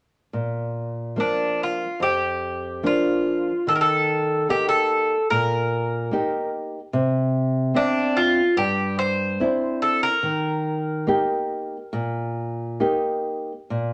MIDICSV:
0, 0, Header, 1, 3, 480
1, 0, Start_track
1, 0, Tempo, 839161
1, 185, Time_signature, 4, 2, 24, 8
1, 2101, Tempo, 818554
1, 5461, Tempo, 842697
1, 6901, Tempo, 879765
1, 7993, End_track
2, 0, Start_track
2, 0, Title_t, "Bouzouki"
2, 0, Program_c, 0, 25
2, 686, Note_on_c, 0, 62, 47
2, 926, Note_off_c, 0, 62, 0
2, 934, Note_on_c, 0, 65, 54
2, 1156, Note_off_c, 0, 65, 0
2, 1158, Note_on_c, 0, 67, 60
2, 1636, Note_off_c, 0, 67, 0
2, 1638, Note_on_c, 0, 65, 58
2, 2105, Note_off_c, 0, 65, 0
2, 2108, Note_on_c, 0, 69, 66
2, 2146, Note_off_c, 0, 69, 0
2, 2149, Note_on_c, 0, 70, 56
2, 2179, Note_off_c, 0, 70, 0
2, 2181, Note_on_c, 0, 69, 64
2, 2584, Note_off_c, 0, 69, 0
2, 2587, Note_on_c, 0, 67, 69
2, 2693, Note_off_c, 0, 67, 0
2, 2695, Note_on_c, 0, 69, 72
2, 3054, Note_off_c, 0, 69, 0
2, 3057, Note_on_c, 0, 70, 69
2, 3758, Note_off_c, 0, 70, 0
2, 4500, Note_on_c, 0, 62, 67
2, 4736, Note_on_c, 0, 65, 67
2, 4744, Note_off_c, 0, 62, 0
2, 4960, Note_off_c, 0, 65, 0
2, 4974, Note_on_c, 0, 67, 74
2, 5214, Note_off_c, 0, 67, 0
2, 5217, Note_on_c, 0, 72, 76
2, 5697, Note_off_c, 0, 72, 0
2, 5699, Note_on_c, 0, 69, 73
2, 5816, Note_off_c, 0, 69, 0
2, 5818, Note_on_c, 0, 70, 70
2, 7363, Note_off_c, 0, 70, 0
2, 7993, End_track
3, 0, Start_track
3, 0, Title_t, "Nylon-string guitar"
3, 0, Program_c, 1, 24
3, 191, Note_on_c, 1, 46, 44
3, 659, Note_off_c, 1, 46, 0
3, 664, Note_on_c, 1, 53, 33
3, 671, Note_on_c, 1, 58, 30
3, 675, Note_on_c, 1, 62, 35
3, 1050, Note_off_c, 1, 53, 0
3, 1054, Note_off_c, 1, 58, 0
3, 1056, Note_off_c, 1, 62, 0
3, 1144, Note_on_c, 1, 41, 44
3, 1609, Note_off_c, 1, 41, 0
3, 1621, Note_on_c, 1, 53, 34
3, 1623, Note_on_c, 1, 58, 32
3, 1624, Note_on_c, 1, 62, 40
3, 2003, Note_off_c, 1, 53, 0
3, 2004, Note_off_c, 1, 58, 0
3, 2005, Note_off_c, 1, 62, 0
3, 2100, Note_on_c, 1, 51, 47
3, 2567, Note_off_c, 1, 51, 0
3, 2579, Note_on_c, 1, 58, 37
3, 2582, Note_on_c, 1, 63, 32
3, 2583, Note_on_c, 1, 67, 40
3, 2963, Note_off_c, 1, 58, 0
3, 2963, Note_off_c, 1, 63, 0
3, 2965, Note_off_c, 1, 67, 0
3, 3061, Note_on_c, 1, 46, 51
3, 3528, Note_off_c, 1, 46, 0
3, 3532, Note_on_c, 1, 58, 39
3, 3539, Note_on_c, 1, 63, 36
3, 3543, Note_on_c, 1, 67, 44
3, 3921, Note_off_c, 1, 58, 0
3, 3925, Note_off_c, 1, 63, 0
3, 3928, Note_off_c, 1, 67, 0
3, 4013, Note_on_c, 1, 48, 54
3, 4479, Note_off_c, 1, 48, 0
3, 4488, Note_on_c, 1, 60, 40
3, 4493, Note_on_c, 1, 62, 38
3, 4496, Note_on_c, 1, 76, 41
3, 4876, Note_off_c, 1, 60, 0
3, 4877, Note_off_c, 1, 62, 0
3, 4880, Note_off_c, 1, 76, 0
3, 4971, Note_on_c, 1, 43, 57
3, 5446, Note_off_c, 1, 43, 0
3, 5459, Note_on_c, 1, 60, 38
3, 5461, Note_on_c, 1, 62, 36
3, 5466, Note_on_c, 1, 64, 44
3, 5843, Note_off_c, 1, 60, 0
3, 5844, Note_off_c, 1, 62, 0
3, 5847, Note_off_c, 1, 64, 0
3, 5932, Note_on_c, 1, 51, 55
3, 6400, Note_off_c, 1, 51, 0
3, 6410, Note_on_c, 1, 58, 40
3, 6413, Note_on_c, 1, 63, 37
3, 6418, Note_on_c, 1, 67, 44
3, 6801, Note_off_c, 1, 58, 0
3, 6803, Note_off_c, 1, 63, 0
3, 6806, Note_off_c, 1, 67, 0
3, 6899, Note_on_c, 1, 46, 57
3, 7370, Note_off_c, 1, 46, 0
3, 7375, Note_on_c, 1, 58, 41
3, 7378, Note_on_c, 1, 63, 37
3, 7380, Note_on_c, 1, 67, 47
3, 7764, Note_off_c, 1, 58, 0
3, 7765, Note_off_c, 1, 63, 0
3, 7765, Note_off_c, 1, 67, 0
3, 7868, Note_on_c, 1, 46, 54
3, 7993, Note_off_c, 1, 46, 0
3, 7993, End_track
0, 0, End_of_file